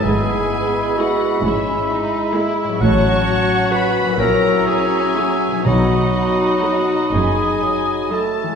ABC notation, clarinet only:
X:1
M:6/8
L:1/8
Q:3/8=43
K:E
V:1 name="Clarinet"
G2 F E z2 | c2 B ^A G2 | F3 G2 A |]